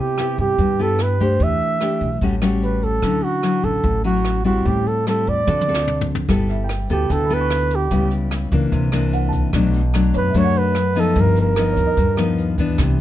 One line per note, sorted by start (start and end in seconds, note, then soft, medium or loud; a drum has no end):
0.00 0.57 C3 soft
0.00 0.18 B3 medium
0.00 0.18 E4 medium
0.00 0.19 G4 medium
0.00 0.40 G4 medium
0.18 0.76 B3 soft
0.18 0.77 E4 soft
0.18 0.77 G4 soft
0.18 cross-stick medium
0.18 closed hi-hat soft
0.38 0.57 G2 medium
0.38 0.84 G4 medium
0.38 kick soft
0.38 closed hi-hat soft
0.58 1.36 G2 medium
0.58 1.38 G2 soft
0.58 kick medium
0.58 closed hi-hat soft
0.79 1.17 B3 medium
0.79 1.17 E4 soft
0.79 1.17 G4 medium
0.79 1.04 A4 medium
0.79 closed hi-hat soft
0.99 1.25 B4 medium
0.99 cross-stick medium
0.99 closed hi-hat soft
1.20 1.78 A3 medium
1.20 1.78 D4 soft
1.20 1.78 G4 medium
1.20 1.45 C5 medium
1.20 kick soft
1.20 closed hi-hat soft
1.40 1.59 E2 medium
1.40 2.20 E3 soft
1.40 2.23 E5 medium
1.40 kick medium
1.40 closed hi-hat soft
1.60 closed hi-hat soft
1.81 2.08 A3 soft
1.81 2.09 D4 soft
1.81 2.09 G4 medium
1.81 cross-stick medium
1.81 closed hi-hat soft
2.01 2.20 B1 medium
2.01 kick soft
2.01 closed hi-hat soft
2.21 2.99 A1 medium
2.21 3.01 A2 medium
2.21 2.34 G3 medium
2.21 2.34 C#4 soft
2.21 2.34 F#4 medium
2.21 kick medium
2.21 closed hi-hat soft
2.42 3.00 G3 medium
2.42 3.00 C#4 medium
2.42 3.00 F#4 medium
2.42 cross-stick medium
2.42 closed hi-hat soft
2.62 2.85 B4 medium
2.62 closed hi-hat soft
2.82 3.26 A4 medium
2.82 kick soft
2.82 closed hi-hat soft
3.02 3.22 D2 medium
3.02 3.82 D3 soft
3.02 3.40 F#3 soft
3.02 3.41 C#4 soft
3.02 3.41 E4 medium
3.02 kick medium
3.02 cross-stick soft
3.02 closed hi-hat soft
3.23 3.66 F#4 medium
3.23 closed hi-hat soft
3.43 4.01 F#3 soft
3.43 4.01 C#4 soft
3.43 4.02 E4 soft
3.43 cross-stick soft
3.43 closed hi-hat soft
3.64 3.83 A1 medium
3.64 4.05 A4 medium
3.64 kick soft
3.64 closed hi-hat soft
3.84 4.61 A1 medium
3.84 4.64 A2 soft
3.84 kick medium
3.84 closed hi-hat soft
4.04 4.42 F#3 medium
4.04 4.42 C#4 soft
4.04 4.42 E4 medium
4.04 4.43 F#4 medium
4.04 closed hi-hat soft
4.25 cross-stick soft
4.25 closed hi-hat soft
4.44 5.03 G3 medium
4.44 5.03 C4 soft
4.44 5.03 E4 medium
4.44 4.68 F#4 medium
4.44 kick soft
4.44 closed hi-hat soft
4.65 4.84 A1 medium
4.65 5.45 A2 soft
4.65 4.89 G4 medium
4.65 kick medium
4.65 closed hi-hat soft
4.86 5.07 A4 medium
4.86 closed hi-hat soft
5.07 5.46 G3 soft
5.07 5.46 C4 soft
5.07 5.46 E4 soft
5.07 5.31 A4 medium
5.07 cross-stick medium
5.07 closed hi-hat soft
5.27 5.46 E2 medium
5.27 6.09 D5 medium
5.27 kick soft
5.27 closed hi-hat soft
5.47 6.24 D2 medium
5.47 6.26 D3 soft
5.47 5.64 C4 soft
5.47 5.64 F#4 soft
5.47 5.65 A4 soft
5.47 kick soft
5.47 high tom soft
5.61 high tom soft
5.68 6.25 C4 soft
5.68 6.26 F#4 medium
5.68 6.26 A4 medium
5.74 snare soft
5.88 mid tom soft
6.01 floor tom medium
6.15 floor tom soft
6.28 6.85 G1 medium
6.28 7.08 G3 soft
6.28 6.69 B3 soft
6.28 6.69 E4 soft
6.28 6.70 A4 medium
6.28 kick medium
6.28 cross-stick medium
6.28 closed hi-hat medium
6.28 shaker medium
6.49 7.23 E5 soft
6.49 closed hi-hat soft
6.49 shaker soft
6.64 7.09 G5 soft
6.69 cross-stick medium
6.69 closed hi-hat soft
6.89 7.08 D2 medium
6.89 7.27 B3 medium
6.89 7.27 E4 medium
6.89 7.14 G4 medium
6.89 7.27 A4 medium
6.89 closed hi-hat soft
6.89 shaker medium
7.09 7.87 D2 medium
7.09 7.89 D3 medium
7.09 7.35 A4 medium
7.09 7.84 G5 soft
7.09 kick medium
7.09 closed hi-hat medium
7.09 shaker medium
7.25 7.97 B5 soft
7.30 7.88 B3 medium
7.30 7.88 E4 medium
7.30 7.88 A4 medium
7.30 7.77 B4 loud
7.30 closed hi-hat soft
7.30 shaker soft
7.41 8.10 C#6 soft
7.50 cross-stick medium
7.50 closed hi-hat soft
7.71 closed hi-hat soft
7.71 shaker medium
7.75 8.14 G4 medium
7.91 8.48 C#2 medium
7.91 8.70 C#3 soft
7.91 8.49 G3 medium
7.91 8.49 B3 medium
7.91 8.49 E4 medium
7.91 kick medium
7.91 closed hi-hat medium
7.91 shaker medium
8.11 closed hi-hat soft
8.11 shaker soft
8.31 cross-stick medium
8.31 closed hi-hat soft
8.52 8.71 C#2 medium
8.52 8.90 E3 medium
8.52 8.90 A#3 medium
8.52 8.90 D4 medium
8.52 kick soft
8.52 closed hi-hat soft
8.52 shaker medium
8.72 9.49 C2 medium
8.72 9.51 C3 medium
8.72 kick medium
8.72 closed hi-hat medium
8.72 shaker medium
8.92 9.50 E3 medium
8.92 9.50 A#3 medium
8.92 9.50 D4 medium
8.92 cross-stick medium
8.92 closed hi-hat soft
8.92 shaker soft
9.13 9.70 F#5 soft
9.13 closed hi-hat soft
9.29 9.83 A5 soft
9.33 kick medium
9.33 closed hi-hat soft
9.33 shaker medium
9.53 10.10 B1 medium
9.53 10.33 B2 soft
9.53 9.80 F#3 medium
9.53 9.80 A3 soft
9.53 9.80 D4 medium
9.53 kick medium
9.53 cross-stick medium
9.53 closed hi-hat medium
9.53 shaker medium
9.73 closed hi-hat soft
9.73 shaker soft
9.94 10.31 F#3 soft
9.94 10.32 A3 soft
9.94 10.32 D4 medium
9.94 cross-stick medium
9.94 closed hi-hat soft
10.14 10.33 F#2 medium
10.14 10.39 B4 medium
10.14 10.89 C#5 soft
10.14 closed hi-hat soft
10.14 shaker medium
10.29 11.01 E5 soft
10.34 11.12 F#2 medium
10.34 11.14 F#2 medium
10.34 10.75 F#3 medium
10.34 10.75 A3 medium
10.34 10.75 D4 medium
10.34 10.60 C#5 medium
10.34 kick medium
10.34 closed hi-hat medium
10.34 shaker medium
10.44 11.14 F#5 soft
10.54 11.01 B4 loud
10.54 closed hi-hat soft
10.54 shaker soft
10.75 cross-stick medium
10.75 closed hi-hat soft
10.95 11.53 F3 medium
10.95 11.54 B3 medium
10.95 11.54 D#4 medium
10.95 closed hi-hat soft
10.95 shaker medium
11.00 11.22 A4 medium
11.15 11.73 G1 medium
11.15 11.96 G2 soft
11.15 kick medium
11.15 closed hi-hat medium
11.15 shaker medium
11.21 11.39 A#4 medium
11.36 closed hi-hat soft
11.36 shaker soft
11.41 12.57 A#4 medium
11.56 11.98 F3 soft
11.56 11.98 B3 soft
11.56 11.98 D#4 medium
11.56 12.31 A#4 soft
11.56 cross-stick medium
11.56 closed hi-hat soft
11.72 12.44 C#5 soft
11.77 11.96 D#2 medium
11.77 kick soft
11.77 closed hi-hat soft
11.77 shaker medium
11.87 12.56 D#5 soft
11.97 12.75 D#2 medium
11.97 12.77 G2 medium
11.97 kick medium
11.97 closed hi-hat medium
11.97 shaker medium
12.17 12.55 F3 medium
12.17 12.55 B3 medium
12.17 12.56 D#4 medium
12.17 cross-stick medium
12.17 closed hi-hat soft
12.17 shaker soft
12.38 closed hi-hat soft
12.58 13.01 E3 medium
12.58 13.01 B3 medium
12.58 13.01 D4 medium
12.58 kick medium
12.58 closed hi-hat soft
12.58 shaker medium
12.78 13.01 C2 medium
12.78 13.01 C3 soft
12.78 kick medium
12.78 cross-stick medium
12.78 closed hi-hat medium
12.78 shaker medium